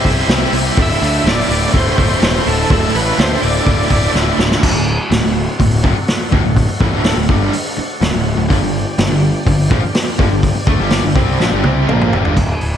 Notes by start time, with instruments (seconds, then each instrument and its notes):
Already playing: tonewheel organ E4 G4 C5 E5
0.04 picked electric bass C2, overdriven electric guitar C4 E4 G4 C5, kick, open hi-hat
0.28 picked electric bass C2, overdriven electric guitar C3 G3 C4 E4 G4 C5, snare, open hi-hat
0.53 picked electric bass C2, overdriven electric guitar C4 E4 G4 C5, open hi-hat
0.77 picked electric bass D1, overdriven electric guitar D2 A2 D3 A3 E4, tonewheel organ E4 A4 D5 E5, kick, open hi-hat
0.82 tonewheel organ E5
1.01 picked electric bass D2, overdriven electric guitar D3 A3 E4, open hi-hat
1.24 picked electric bass D1, overdriven electric guitar A2 D3 A3 E4, snare, open hi-hat
1.29 tonewheel organ D5
1.49 picked electric bass D1, overdriven electric guitar D2 A2 D3 A3 E4, open hi-hat
1.74 picked electric bass D1, overdriven electric guitar A2 D3 A3 E4, tonewheel organ C5, kick, open hi-hat
1.97 picked electric bass D1, overdriven electric guitar D3 A3 E4, kick, open hi-hat
2.22 picked electric bass E1, overdriven electric guitar D2 A2 D3 A3 E4, tonewheel organ C5, snare, open hi-hat
2.47 picked electric bass D1, overdriven electric guitar D3 A3 E4, tonewheel organ A4, open hi-hat
2.70 picked electric bass D1, overdriven electric guitar D2 A2 D3 A3 E4, tonewheel organ A4, kick, open hi-hat
2.94 picked electric bass A1, overdriven electric guitar D3 A3 E4, tonewheel organ B4, open hi-hat
3.18 picked electric bass D2, overdriven electric guitar A2 D3 A3 E4, tonewheel organ C5, snare, open hi-hat
3.43 picked electric bass D1, overdriven electric guitar D2 A2 D3 A3 E4, tonewheel organ D5, open hi-hat
3.66 picked electric bass D1, overdriven electric guitar A2 D3 A3 E4, kick, open hi-hat
3.90 picked electric bass D1, overdriven electric guitar A3 E4, kick, open hi-hat
3.94 overdriven electric guitar D3
4.14 picked electric bass D1, overdriven electric guitar D2 A2 D3 A3 E4, snare
4.38 picked electric bass D1, overdriven electric guitar D3 A3 E4, snare
4.51 snare
4.62 picked electric bass D1, overdriven electric guitar D2 A2, tonewheel organ F#4 A4 D5 F#5, kick, crash
4.74 picked electric bass D1, overdriven electric guitar D2 A2
5.11 picked electric bass D1, overdriven electric guitar D2 A2, snare, open hi-hat
5.23 picked electric bass D1, overdriven electric guitar D2 A2
5.59 picked electric bass D1, overdriven electric guitar D2 A2, kick, open hi-hat
5.84 picked electric bass F1, overdriven electric guitar F2 C3, kick
5.96 muted overdriven electric guitar stroke, muted picked electric bass stroke
6.08 snare, open hi-hat
6.32 picked electric bass D1, overdriven electric guitar D2 A2, kick
6.43 picked electric bass D1, overdriven electric guitar D2 A2
6.57 kick, open hi-hat
6.68 muted picked electric bass stroke, muted overdriven electric guitar stroke
6.80 picked electric bass A1, overdriven electric guitar A2 E3, kick
6.91 picked electric bass D1, overdriven electric guitar D2 A2 D3
7.04 snare, open hi-hat
7.15 picked electric bass D1, overdriven electric guitar D2 A2
7.29 picked electric bass G1, overdriven electric guitar G2 D3 G3, kick
7.53 muted picked electric bass stroke, muted overdriven electric guitar stroke, open hi-hat
7.78 muted overdriven electric guitar stroke, muted picked electric bass stroke
8.01 picked electric bass D1, overdriven electric guitar D2 A2, snare, open hi-hat
8.13 picked electric bass D1, overdriven electric guitar D2 A2
8.37 picked electric bass D1, overdriven electric guitar D2 A2
8.50 picked electric bass G1, overdriven electric guitar G2 D3, tonewheel organ D4 G4 D5 G5, kick, open hi-hat
8.61 picked electric bass G1, overdriven electric guitar G2 D3
8.98 picked electric bass G1, overdriven electric guitar G2 D3, snare, open hi-hat
9.10 picked electric bass G1, overdriven electric guitar G2 D3
9.46 picked electric bass G1, overdriven electric guitar G2 D3, kick, open hi-hat
9.71 picked electric bass A#1, overdriven electric guitar A#2 F3, kick
9.83 muted picked electric bass stroke, muted overdriven electric guitar stroke
9.95 snare, open hi-hat
10.18 picked electric bass G1, overdriven electric guitar G2 D3, kick
10.31 picked electric bass G1, overdriven electric guitar G2 D3
10.43 kick, open hi-hat
10.55 muted overdriven electric guitar stroke, muted picked electric bass stroke
10.67 picked electric bass D2, overdriven electric guitar D3 A3, kick
10.79 picked electric bass G1, overdriven electric guitar G2 D3 G3
10.90 snare, open hi-hat
11.03 picked electric bass G1, overdriven electric guitar G2 D3
11.15 picked electric bass C2, overdriven electric guitar C3 G3 C4, kick
11.39 picked electric bass A#1, overdriven electric guitar A#2 F3, snare
11.52 picked electric bass G1, overdriven electric guitar G2 D3
11.64 picked electric bass C2, overdriven electric guitar C3 G3 C4, high tom
11.88 picked electric bass A#1, overdriven electric guitar A#2 F3 A#3, mid tom
12.01 mid tom
12.11 picked electric bass F1, overdriven electric guitar F2 C3, floor tom
12.24 picked electric bass G1, overdriven electric guitar G2 D3, floor tom
12.37 picked electric bass D1, kick, crash
12.61 picked electric bass D1, open hi-hat